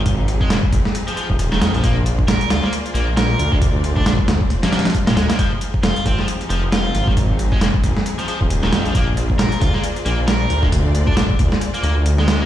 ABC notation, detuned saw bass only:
X:1
M:4/4
L:1/16
Q:"Swing 16ths" 1/4=135
K:Bbmix
V:1 name="Detuned saw bass" clef=bass
A,,,4 F,,, z A,,, z4 E,,,3 F,, B,,,- | B,,,4 B,,, z D,, z3 B,,,4 D,,2- | D,,4 B,,, z D,, z6 B,, D,, z | z4 F,,, z A,,, z3 F,,,4 A,,,2- |
A,,,4 F,,, z A,,, z4 E,,,3 F,, B,,,- | B,,,4 B,,, z D,, z3 B,,,4 D,,2- | D,,4 B,,, z D,, z3 D,,6 |]